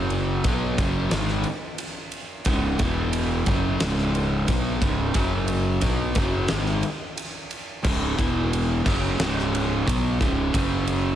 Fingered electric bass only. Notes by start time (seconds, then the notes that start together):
Already playing: F#1
0.45 B1
0.78 F#1
1.12 G#1
2.46 C#1
2.80 E1
3.47 F#1
3.81 C#1
4.49 B1
4.82 C#1
5.15 F#1
5.83 B1
6.16 F#1
6.51 G#1
7.85 C#1
8.19 E1
8.86 F#1
9.20 C#1
9.88 B1
10.21 C#1
10.54 F#1